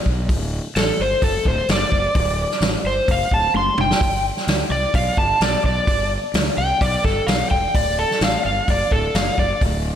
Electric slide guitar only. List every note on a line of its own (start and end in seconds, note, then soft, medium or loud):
0.77 0.99 A4 loud
1.01 1.23 C5 medium
1.23 1.46 A4 medium
1.48 1.69 C5 medium
1.72 2.61 D5 medium
2.87 3.09 C5 medium
3.11 3.32 F5 medium
3.34 3.55 A5 medium
3.57 3.78 C6 medium
3.81 4.25 G5 loud
4.72 4.94 D5 loud
4.95 5.17 F5 medium
5.18 5.41 A5 medium
5.42 5.64 D5 medium
5.66 6.10 D5 loud
6.58 6.81 G5 loud
6.82 7.04 D5 medium
7.05 7.27 A4 loud
7.27 7.50 F5 medium
7.51 7.74 G5 medium
7.75 7.98 D5 loud
7.99 8.21 A4 loud
8.24 8.45 F5 loud
8.46 8.68 F5 medium
8.70 8.92 D5 loud
8.92 9.14 A4 medium
9.15 9.37 F5 medium
9.39 9.61 D5 medium